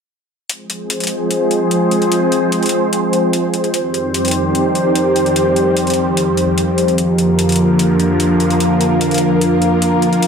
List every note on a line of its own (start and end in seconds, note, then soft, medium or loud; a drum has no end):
0.49 3.71 F3 medium
0.49 3.71 G#3 medium
0.49 3.71 C4 medium
0.49 4.85 F4 medium
0.49 3.71 G#4 medium
0.49 3.71 C5 medium
0.49 closed hi-hat medium
0.70 closed hi-hat medium
0.90 3.74 G#4 medium
0.90 closed hi-hat medium
1.00 closed hi-hat soft
1.04 closed hi-hat medium
1.07 closed hi-hat medium
1.26 8.09 C5 medium
1.31 closed hi-hat medium
1.51 3.74 G#5 medium
1.51 closed hi-hat soft
1.71 closed hi-hat medium
1.91 closed hi-hat soft
2.02 closed hi-hat soft
2.12 closed hi-hat medium
2.32 closed hi-hat soft
2.52 closed hi-hat medium
2.63 closed hi-hat soft
2.66 closed hi-hat medium
2.69 closed hi-hat medium
2.93 closed hi-hat medium
3.13 closed hi-hat soft
3.33 closed hi-hat medium
3.54 closed hi-hat soft
3.64 closed hi-hat soft
3.74 10.27 F2 medium
3.74 6.95 D#3 medium
3.74 10.27 F3 medium
3.74 6.95 G3 medium
3.74 6.95 C4 medium
3.74 6.95 G4 medium
3.74 6.95 C5 medium
3.74 closed hi-hat medium
3.92 6.98 D#4 medium
3.92 closed hi-hat soft
3.98 7.87 G4 medium
3.98 7.50 G5 medium
4.14 closed hi-hat medium
4.25 closed hi-hat soft
4.28 closed hi-hat medium
4.31 closed hi-hat medium
4.55 closed hi-hat medium
4.75 closed hi-hat soft
4.95 closed hi-hat medium
5.16 closed hi-hat soft
5.26 closed hi-hat soft
5.36 closed hi-hat medium
5.56 closed hi-hat soft
5.77 closed hi-hat medium
5.87 closed hi-hat soft
5.90 closed hi-hat medium
5.94 closed hi-hat medium
6.17 closed hi-hat medium
6.37 closed hi-hat soft
6.58 closed hi-hat medium
6.78 closed hi-hat soft
6.88 closed hi-hat soft
6.98 10.19 D3 medium
6.98 10.19 F3 medium
6.98 10.27 A#3 medium
6.98 10.27 F4 medium
6.98 10.27 A#4 medium
6.98 closed hi-hat medium
7.13 10.23 D4 medium
7.18 closed hi-hat soft
7.27 10.27 A#4 medium
7.39 closed hi-hat medium
7.49 closed hi-hat soft
7.52 closed hi-hat medium
7.56 closed hi-hat medium
7.62 10.27 F4 medium
7.79 closed hi-hat medium
7.88 10.27 F5 medium
8.00 closed hi-hat soft
8.20 closed hi-hat medium
8.40 closed hi-hat soft
8.50 closed hi-hat soft
8.60 closed hi-hat medium
8.81 closed hi-hat soft
9.01 closed hi-hat medium
9.11 closed hi-hat soft
9.14 closed hi-hat medium
9.18 closed hi-hat medium
9.41 closed hi-hat medium
9.62 closed hi-hat soft
9.82 closed hi-hat medium
10.02 closed hi-hat soft
10.13 closed hi-hat soft
10.22 10.27 D#3 medium
10.22 10.27 G3 medium
10.22 closed hi-hat medium